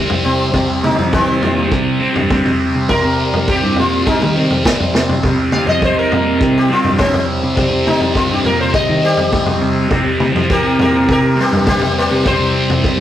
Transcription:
Already playing: C3 G3 C4 F4
0.10 floor tom
0.24 C3 C4
0.52 C3 G3 C4, kick, floor tom
0.84 C3 D#4, mid tom
0.98 F3, floor tom
1.13 D#3 C4, kick
1.42 A#2, floor tom
1.71 C3, kick
2.00 C3 G3 C4
2.16 G2, floor tom
2.29 C3 G3 C4, kick, mid tom
2.46 floor tom
2.75 C3
2.89 C3 G3 C4 A#4, kick, floor tom
3.05 C3
3.34 floor tom
3.48 G4, kick
3.64 G2
3.76 A#2 F4, floor tom
4.06 G3 D#4, kick
4.22 D#3, mid tom
4.36 C3 G3 C4
4.50 floor tom
4.64 C3 G3 C4, kick, snare, mid tom
4.80 floor tom
4.95 C3, snare
5.09 floor tom
5.23 C3 G3 C4, kick, floor tom
5.52 C3 F5, mid tom
5.67 F3 D#5, floor tom
5.82 C5, kick
5.99 A#4
6.12 A#2, floor tom
6.41 C3, kick
6.58 G4
6.70 C3 G3 C4 F4
6.84 G2, floor tom
6.97 C3 G3 C4, kick, mid tom
7.14 floor tom
7.43 C3
7.56 C3 G3 C4, kick, floor tom
7.73 C3
7.87 D#4, mid tom
8.00 floor tom
8.15 F4, kick
8.32 G2 G4
8.45 A#2 A#4, floor tom
8.61 C5
8.74 D#5, kick
8.89 D#3
9.01 C3 G3 C4 G4
9.17 floor tom
9.31 C3 G3 C4, kick, mid tom
9.46 floor tom
9.62 C3
9.90 C3 G3 C4, kick, floor tom
10.20 C3, mid tom
10.34 F3, floor tom
10.50 G4 A#4, kick
10.79 A#2 G4 A#4, floor tom
11.08 C3 G4 A#4, kick
11.36 C3 G3 C4
11.40 A#3 G4
11.52 G2, floor tom
11.66 C3 G3 A#3 C4 G4, kick, mid tom
11.82 floor tom
11.99 A#3 G4
12.11 C3
12.25 C3 G3 C4 C5, kick, floor tom
12.40 C3
12.70 floor tom
12.84 kick

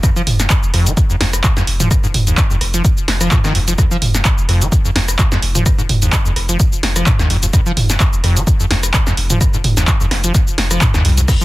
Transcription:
0.03 F2, kick, cross-stick, closed hi-hat, shaker
0.16 F3, shaker
0.27 F1, mid tom, open hi-hat
0.40 snare, closed hi-hat, shaker
0.50 F2, kick, clap, closed hi-hat, shaker
0.63 F1, shaker
0.74 F1 F2, cross-stick, open hi-hat
0.86 F3, closed hi-hat, shaker
0.97 kick, closed hi-hat, shaker
1.10 F2, shaker
1.21 F1 F2, snare, open hi-hat
1.33 cross-stick, closed hi-hat, shaker
1.44 F2, kick, clap, closed hi-hat, shaker
1.57 F2, snare, shaker
1.67 F1, open hi-hat
1.80 F3, closed hi-hat, mid tom, shaker
1.91 kick, cross-stick, closed hi-hat, shaker
2.04 G#2, shaker
2.14 F1, mid tom, open hi-hat
2.27 D#2, closed hi-hat, shaker
2.37 F2, kick, clap, closed hi-hat, shaker
2.50 F1 F2, shaker
2.61 F1, cross-stick, open hi-hat
2.74 F3, closed hi-hat, shaker
2.85 kick, closed hi-hat, shaker
2.97 shaker
3.08 F1, snare, open hi-hat
3.21 F3, cross-stick, closed hi-hat, shaker
3.31 F3, kick, clap, closed hi-hat, mid tom, shaker
3.44 D#3, snare, shaker
3.55 F1 F2, open hi-hat
3.68 F3, closed hi-hat, shaker
3.78 F2, kick, cross-stick, closed hi-hat, shaker
3.91 F3, shaker
4.02 F1, mid tom, open hi-hat
4.15 snare, closed hi-hat, shaker
4.25 F2, kick, clap, closed hi-hat, shaker
4.38 F1, shaker
4.49 F1 F2, cross-stick, open hi-hat
4.61 F3, closed hi-hat, shaker
4.72 kick, closed hi-hat, shaker
4.85 F2, shaker
4.95 F1 F2, snare, open hi-hat
5.08 cross-stick, closed hi-hat, shaker
5.19 F2, kick, clap, closed hi-hat, shaker
5.32 F2, snare, shaker
5.42 F1, open hi-hat
5.55 F3, closed hi-hat, mid tom, shaker
5.66 kick, cross-stick, closed hi-hat, shaker
5.78 G#2, shaker
5.89 F1, mid tom, open hi-hat
6.02 D#2, closed hi-hat, shaker
6.12 F2, kick, clap, closed hi-hat, shaker
6.25 F1 F2, shaker
6.36 F1, cross-stick, open hi-hat
6.49 F3, closed hi-hat, shaker
6.60 kick, closed hi-hat, shaker
6.73 shaker
6.83 F1, snare, open hi-hat
6.96 F3, cross-stick, closed hi-hat, shaker
7.06 F2, kick, clap, closed hi-hat, mid tom, shaker
7.19 D#2, snare, shaker
7.30 F1 F2, open hi-hat
7.43 F2, closed hi-hat, shaker
7.53 F2, kick, cross-stick, closed hi-hat, shaker
7.66 F3, shaker
7.77 F1, mid tom, open hi-hat
7.90 snare, closed hi-hat, shaker
8.00 F2, kick, clap, closed hi-hat, shaker
8.13 F1, shaker
8.24 F1 F2, cross-stick, open hi-hat
8.36 F3, closed hi-hat, shaker
8.47 kick, closed hi-hat, shaker
8.60 F2, shaker
8.70 F1 F2, snare, open hi-hat
8.83 cross-stick, closed hi-hat, shaker
8.94 F2, kick, clap, closed hi-hat, shaker
9.07 F2, snare, shaker
9.17 F1, open hi-hat
9.30 F3, closed hi-hat, mid tom, shaker
9.41 kick, cross-stick, closed hi-hat, shaker
9.54 G#2, shaker
9.64 F1, mid tom, open hi-hat
9.77 D#2, snare, closed hi-hat, shaker
9.87 F2, kick, clap, closed hi-hat, shaker
10.00 F1 F2, shaker
10.11 F1, cross-stick, snare, open hi-hat
10.24 F3, closed hi-hat, shaker
10.35 kick, snare, closed hi-hat, shaker
10.47 shaker
10.58 F1, snare, open hi-hat
10.71 F3, cross-stick, closed hi-hat, shaker
10.81 F2, kick, clap, closed hi-hat, mid tom, shaker
10.94 D#2, snare, shaker
11.05 C2 F2, open hi-hat
11.18 F2, closed hi-hat, shaker
11.28 F2, kick, cross-stick, closed hi-hat, crash, shaker
11.41 F3, shaker

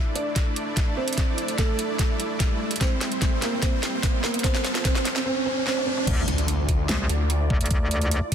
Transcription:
Already playing: A3 D4 E4 D5, riser
0.15 D4 D5, closed hi-hat
0.36 kick, snare, closed hi-hat
0.56 closed hi-hat
0.77 kick, snare, closed hi-hat
0.97 C4 C5
1.08 closed hi-hat
1.13 closed hi-hat
1.18 kick, snare, closed hi-hat
1.38 closed hi-hat
1.48 closed hi-hat
1.58 A3 A4, kick, snare, closed hi-hat
1.79 closed hi-hat
1.99 kick, snare, closed hi-hat
2.20 closed hi-hat
2.40 kick, snare, closed hi-hat
2.71 closed hi-hat
2.76 closed hi-hat
2.81 G3 C4 C5, kick, snare, closed hi-hat
3.01 snare, closed hi-hat
3.12 closed hi-hat
3.22 kick, snare, closed hi-hat
3.42 A#3 A#4, snare, closed hi-hat
3.62 C4 C5, kick, snare, closed hi-hat
3.83 snare, closed hi-hat
4.03 kick, snare, closed hi-hat
4.24 A#3 A#4, snare
4.34 closed hi-hat
4.39 closed hi-hat
4.44 C4 A4 C5, kick, snare, closed hi-hat
4.54 snare
4.64 snare, closed hi-hat
4.75 snare, closed hi-hat
4.85 C4 C5, kick, snare, closed hi-hat
4.95 snare
5.05 snare, closed hi-hat
5.16 snare
5.26 C4 C5
5.46 C4 C5
5.67 C4 C5, snare
5.77 high tom
5.87 C4 C5
5.97 mid tom
6.07 D2 A3 E4 F4 D5, kick, closed hi-hat, crash, impact
6.28 D2, closed hi-hat
6.38 closed hi-hat
6.48 closed hi-hat
6.69 kick, closed hi-hat
6.89 C2, snare, closed hi-hat
7.09 D2, closed hi-hat
7.30 closed hi-hat
7.50 D2, kick
7.61 D2, closed hi-hat
7.66 closed hi-hat
7.71 kick, closed hi-hat
7.91 closed hi-hat
8.01 closed hi-hat
8.11 closed hi-hat
8.32 kick, closed hi-hat

